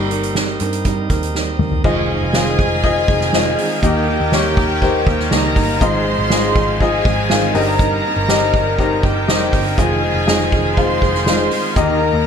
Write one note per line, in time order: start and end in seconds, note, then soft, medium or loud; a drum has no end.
0.00 0.57 G1 medium
0.00 0.11 G3 medium
0.00 1.80 G3 medium
0.00 1.81 A#3 soft
0.00 0.11 C4 medium
0.00 1.83 C4 medium
0.00 0.11 D#4 medium
0.00 1.81 D#4 medium
0.00 1.83 G4 medium
0.00 1.83 A#4 medium
0.00 1.83 D#5 medium
0.10 0.34 C4 soft
0.10 0.36 D#4 medium
0.10 0.35 A#4 medium
0.10 closed hi-hat medium
0.23 closed hi-hat medium
0.35 0.60 G3 medium
0.35 0.61 C4 medium
0.35 0.61 D#4 medium
0.35 0.59 A#4 medium
0.35 snare loud
0.60 1.07 G2 medium
0.60 0.84 C4 soft
0.60 0.85 D#4 medium
0.60 0.85 A#4 medium
0.60 closed hi-hat medium
0.73 closed hi-hat medium
0.85 1.10 G3 medium
0.85 1.10 C4 medium
0.85 1.09 D#4 medium
0.85 1.08 A#4 medium
0.85 kick medium
0.85 closed hi-hat medium
1.09 1.81 D#2 medium
1.09 1.34 C4 medium
1.09 1.35 D#4 medium
1.09 1.35 A#4 medium
1.09 kick medium
1.09 closed hi-hat medium
1.23 closed hi-hat medium
1.34 1.59 G3 medium
1.34 1.60 C4 medium
1.34 1.59 D#4 medium
1.34 1.57 A#4 medium
1.34 snare medium
1.58 1.85 C4 soft
1.58 1.85 D#4 medium
1.58 1.84 A#4 medium
1.58 mid tom medium
1.71 floor tom medium
1.84 2.19 F1 loud
1.84 2.09 F2 medium
1.84 2.09 C3 medium
1.84 2.10 D#3 medium
1.84 3.81 F3 medium
1.84 2.10 G#3 medium
1.84 3.81 C4 medium
1.84 2.09 C4 medium
1.84 2.24 D#4 medium
1.84 5.77 D#4 medium
1.84 2.24 F4 medium
1.84 5.78 F4 medium
1.84 2.24 G#4 medium
1.84 3.79 G#4 medium
1.84 3.81 G#4 medium
1.84 2.08 G#4 medium
1.84 2.24 C5 medium
1.84 2.24 D#5 medium
1.84 3.79 G#5 loud
1.84 kick loud
1.84 crash loud
2.09 2.34 D#3 soft
2.09 2.34 G#3 soft
2.09 2.35 C4 medium
2.09 2.34 G#4 medium
2.09 ride medium
2.21 2.56 F1 loud
2.33 2.59 F2 medium
2.33 2.59 C3 medium
2.33 2.60 D#3 loud
2.33 2.59 G#3 medium
2.33 2.58 C4 loud
2.33 2.73 D#4 medium
2.33 2.74 F4 medium
2.33 2.74 G#4 medium
2.33 2.57 G#4 loud
2.33 2.74 C5 medium
2.33 2.74 D#5 medium
2.33 snare loud
2.33 ride medium
2.46 ride soft
2.58 3.05 F1 loud
2.58 2.82 D#3 medium
2.58 2.83 G#3 medium
2.58 2.84 C4 medium
2.58 2.83 G#4 medium
2.58 kick medium
2.58 ride medium
2.83 3.09 D#3 medium
2.83 3.09 G#3 medium
2.83 3.08 C4 medium
2.83 3.23 D#4 medium
2.83 3.23 F4 medium
2.83 3.23 G#4 medium
2.83 3.07 G#4 medium
2.83 3.23 C5 medium
2.83 3.23 D#5 loud
2.83 kick medium
2.83 ride medium
3.08 3.54 F1 medium
3.08 3.34 D#3 medium
3.08 3.34 G#3 medium
3.08 3.34 C4 medium
3.08 3.33 G#4 medium
3.08 kick loud
3.08 ride medium
3.21 snare soft
3.33 3.58 F2 medium
3.33 3.59 C3 medium
3.33 3.59 D#3 medium
3.33 3.59 G#3 medium
3.33 3.58 C4 medium
3.33 3.73 D#4 medium
3.33 3.73 F4 medium
3.33 3.73 G#4 medium
3.33 3.57 G#4 loud
3.33 3.73 C5 medium
3.33 3.73 D#5 loud
3.33 snare loud
3.33 ride medium
3.58 3.81 D#3 medium
3.58 3.83 G#3 medium
3.58 3.83 C4 medium
3.58 3.83 G#4 medium
3.58 open hi-hat medium
3.58 ride medium
3.82 4.17 D#2 loud
3.82 4.07 D#3 medium
3.82 4.54 D#3 medium
3.82 5.79 A#3 medium
3.82 4.08 A#3 medium
3.82 4.22 A#3 medium
3.82 4.22 D#4 medium
3.82 4.07 D#4 medium
3.82 5.29 G4 medium
3.82 4.22 G4 medium
3.82 4.06 G4 loud
3.82 4.22 A#4 medium
3.82 4.22 D#5 medium
3.82 5.29 G5 loud
3.82 kick loud
3.82 hi-hat pedal medium
3.82 ride medium
4.07 4.31 A#3 soft
4.07 4.32 D#4 medium
4.07 4.32 G4 medium
4.07 ride medium
4.21 4.55 D#2 loud
4.31 4.57 D#3 medium
4.31 4.57 A#3 loud
4.31 4.72 A#3 medium
4.31 4.72 D#4 medium
4.31 4.57 D#4 loud
4.31 4.72 G4 medium
4.31 4.56 G4 loud
4.31 4.72 A#4 medium
4.31 4.72 C#5 medium
4.31 snare loud
4.31 ride medium
4.56 5.03 D#2 loud
4.56 4.82 A#3 soft
4.56 4.83 D#4 medium
4.56 4.82 G4 medium
4.56 kick loud
4.56 ride medium
4.70 ride soft
4.82 5.07 D#3 medium
4.82 5.21 A#3 medium
4.82 5.07 A#3 medium
4.82 5.21 D#4 medium
4.82 5.07 D#4 medium
4.82 5.21 G4 medium
4.82 5.05 G4 medium
4.82 5.21 A#4 medium
4.82 5.21 C5 loud
4.82 kick medium
4.82 ride medium
5.06 5.30 D#2 loud
5.06 5.31 A#3 soft
5.06 5.32 D#4 medium
5.06 5.31 G4 medium
5.06 kick loud
5.06 ride medium
5.19 snare soft
5.31 5.55 C#2 medium
5.31 5.56 D#3 medium
5.31 5.71 A#3 medium
5.31 5.57 A#3 medium
5.31 5.71 D#4 medium
5.31 5.56 D#4 loud
5.31 5.71 G4 medium
5.31 5.54 G4 loud
5.31 5.80 A#4 medium
5.31 5.71 A#4 medium
5.31 5.71 D#5 medium
5.31 5.80 A#5 medium
5.31 snare loud
5.31 ride medium
5.55 5.79 G1 loud
5.55 5.82 A#3 medium
5.55 5.82 D#4 medium
5.55 5.81 G4 medium
5.55 kick medium
5.55 open hi-hat medium
5.55 ride medium
5.81 6.16 G#1 loud
5.81 6.06 G#2 medium
5.81 6.52 G#2 medium
5.81 6.06 D#3 medium
5.81 6.06 F3 medium
5.81 7.54 G#3 medium
5.81 6.06 G#3 medium
5.81 7.54 C4 medium
5.81 6.05 C4 loud
5.81 6.21 D#4 medium
5.81 6.20 F4 medium
5.81 7.53 F4 medium
5.81 6.20 G#4 medium
5.81 6.04 G#4 loud
5.81 6.21 C5 medium
5.81 6.79 C5 medium
5.81 6.21 D#5 loud
5.81 6.79 C6 loud
5.81 kick loud
5.81 hi-hat pedal medium
5.81 ride medium
6.05 6.30 F3 soft
6.05 6.30 G#3 medium
6.05 6.31 C4 medium
6.05 6.31 G#4 medium
6.05 ride medium
6.19 6.53 G#1 loud
6.30 6.55 G#2 loud
6.30 6.56 D#3 loud
6.30 6.56 F3 medium
6.30 6.56 G#3 loud
6.30 6.55 C4 loud
6.30 6.70 D#4 medium
6.30 6.70 F4 medium
6.30 6.70 G#4 medium
6.30 6.54 G#4 loud
6.30 6.70 C5 medium
6.30 6.70 D#5 loud
6.30 snare loud
6.30 ride medium
6.55 7.02 G#1 loud
6.55 6.79 F3 soft
6.55 6.80 G#3 medium
6.55 6.81 C4 medium
6.55 6.80 G#4 medium
6.55 kick loud
6.55 ride medium
6.80 7.05 F3 medium
6.80 7.06 G#3 medium
6.80 7.05 C4 medium
6.80 7.20 D#4 medium
6.80 7.20 F4 medium
6.80 7.53 G#4 medium
6.80 7.20 G#4 medium
6.80 7.03 G#4 medium
6.80 7.20 C5 medium
6.80 7.20 D#5 loud
6.80 7.53 G#5 medium
6.80 kick medium
6.80 ride medium
7.05 7.51 G#1 loud
7.05 7.29 F3 medium
7.05 7.29 G#3 medium
7.05 7.29 C4 medium
7.05 7.30 G#4 medium
7.05 kick loud
7.05 ride medium
7.29 7.54 G#2 medium
7.29 7.55 D#3 loud
7.29 7.55 F3 medium
7.29 7.55 G#3 loud
7.29 7.55 C4 loud
7.29 7.53 D#4 medium
7.29 7.55 F4 medium
7.29 7.55 G#4 medium
7.29 7.54 G#4 loud
7.29 7.54 C5 medium
7.29 7.55 F5 loud
7.29 snare loud
7.29 ride medium
7.54 8.01 G1 loud
7.54 8.25 G2 medium
7.54 9.76 A#3 medium
7.54 11.72 C4 medium
7.54 7.79 C4 soft
7.54 8.14 D#4 medium
7.54 12.27 D#4 medium
7.54 7.80 D#4 medium
7.54 8.14 G4 medium
7.54 7.79 A#4 medium
7.54 8.14 A#4 medium
7.54 9.01 A#4 medium
7.54 8.15 C5 medium
7.54 8.15 D#5 loud
7.54 9.01 A#5 loud
7.54 open hi-hat medium
7.54 ride medium
7.79 8.04 G3 medium
7.79 8.05 C4 medium
7.79 8.05 D#4 medium
7.79 8.03 A#4 medium
7.79 kick loud
7.79 hi-hat pedal medium
7.79 ride medium
8.04 8.29 C4 soft
8.04 8.29 D#4 medium
8.04 8.29 A#4 medium
8.04 ride medium
8.17 8.51 G1 medium
8.28 8.54 G3 medium
8.28 8.54 C4 loud
8.28 8.68 D#4 medium
8.28 8.54 D#4 loud
8.28 8.68 G4 medium
8.28 8.69 A#4 medium
8.28 8.53 A#4 loud
8.28 8.68 C5 medium
8.28 8.68 D#5 medium
8.28 snare loud
8.28 ride medium
8.41 ride soft
8.53 9.00 G1 loud
8.53 8.79 C4 soft
8.53 8.79 D#4 medium
8.53 8.79 A#4 medium
8.53 kick loud
8.53 ride medium
8.78 9.03 G3 medium
8.78 9.04 C4 medium
8.78 9.18 D#4 medium
8.78 9.03 D#4 medium
8.78 9.18 G4 medium
8.78 9.18 A#4 medium
8.78 9.02 A#4 medium
8.78 9.18 C5 medium
8.78 9.18 D#5 medium
8.78 kick medium
8.78 ride medium
9.03 9.28 G1 medium
9.03 9.28 C4 medium
9.03 9.29 D#4 medium
9.03 9.76 G4 medium
9.03 9.28 A#4 medium
9.03 9.77 G5 medium
9.03 kick loud
9.03 ride medium
9.28 9.51 F1 medium
9.28 9.53 G3 medium
9.28 9.54 C4 medium
9.28 9.67 D#4 medium
9.28 9.53 D#4 medium
9.28 9.67 G4 medium
9.28 9.67 A#4 medium
9.28 9.51 A#4 loud
9.28 9.68 C5 medium
9.28 9.68 D#5 medium
9.28 snare loud
9.28 ride medium
9.53 9.76 G1 medium
9.53 9.78 C4 medium
9.53 9.79 D#4 soft
9.53 9.78 A#4 medium
9.53 kick loud
9.53 open hi-hat medium
9.53 ride medium
9.77 10.12 F1 loud
9.77 10.03 F2 medium
9.77 10.03 C3 medium
9.77 10.03 D#3 medium
9.77 11.75 F3 medium
9.77 10.03 G#3 loud
9.77 10.02 C4 medium
9.77 10.17 D#4 medium
9.77 10.17 F4 medium
9.77 12.27 F4 medium
9.77 10.75 G#4 medium
9.77 11.75 G#4 medium
9.77 10.17 G#4 medium
9.77 10.01 G#4 medium
9.77 10.17 C5 medium
9.77 10.17 D#5 medium
9.77 10.75 G#5 medium
9.77 kick loud
9.77 hi-hat pedal medium
9.77 ride medium
10.02 10.27 D#3 soft
10.02 10.28 G#3 medium
10.02 10.28 C4 medium
10.02 10.27 G#4 medium
10.02 ride medium
10.14 10.49 F1 loud
10.27 10.52 F2 medium
10.27 10.53 C3 loud
10.27 10.53 D#3 medium
10.27 10.53 G#3 medium
10.27 10.52 C4 loud
10.27 10.66 D#4 medium
10.27 10.67 F4 medium
10.27 10.67 G#4 medium
10.27 10.51 G#4 loud
10.27 10.67 C5 medium
10.27 10.67 D#5 loud
10.27 snare loud
10.27 ride medium
10.52 10.98 F1 loud
10.52 10.75 D#3 medium
10.52 10.77 G#3 medium
10.52 10.78 C4 medium
10.52 10.77 G#4 medium
10.52 kick loud
10.52 ride medium
10.65 ride soft
10.77 11.02 D#3 medium
10.77 11.02 G#3 medium
10.77 11.02 C4 medium
10.77 11.17 D#4 medium
10.77 11.17 F4 medium
10.77 11.17 G#4 medium
10.77 11.01 G#4 medium
10.77 11.75 C5 medium
10.77 11.17 C5 medium
10.77 11.17 F5 loud
10.77 11.74 C6 medium
10.77 kick medium
10.77 ride medium
11.02 11.48 F1 loud
11.02 11.26 D#3 medium
11.02 11.27 G#3 soft
11.02 11.27 C4 medium
11.02 11.27 G#4 medium
11.02 kick medium
11.02 ride medium
11.14 snare soft
11.26 11.52 F2 medium
11.26 11.52 C3 medium
11.26 11.52 D#3 loud
11.26 11.52 G#3 loud
11.26 11.51 C4 loud
11.26 11.66 D#4 medium
11.26 11.66 F4 medium
11.26 11.66 G#4 medium
11.26 11.50 G#4 loud
11.26 11.66 C5 medium
11.26 11.66 F5 medium
11.26 snare loud
11.26 ride medium
11.51 11.75 D#3 medium
11.51 11.77 G#3 medium
11.51 11.77 C4 medium
11.51 11.76 G#4 medium
11.51 open hi-hat medium
11.51 ride medium
11.76 12.11 D#2 loud
11.76 12.27 D#3 medium
11.76 12.01 D#3 medium
11.76 12.16 A#3 medium
11.76 12.02 A#3 medium
11.76 12.27 A#3 medium
11.76 12.16 D#4 medium
11.76 12.01 D#4 medium
11.76 12.16 G4 medium
11.76 11.99 G4 medium
11.76 12.27 A#4 medium
11.76 12.16 A#4 medium
11.76 12.16 D#5 loud
11.76 12.27 A#5 loud
11.76 kick loud
11.76 hi-hat pedal medium
11.76 ride medium
12.01 12.25 A#3 soft
12.01 12.26 D#4 medium
12.01 12.26 G4 medium
12.01 ride medium
12.14 12.27 D#2 loud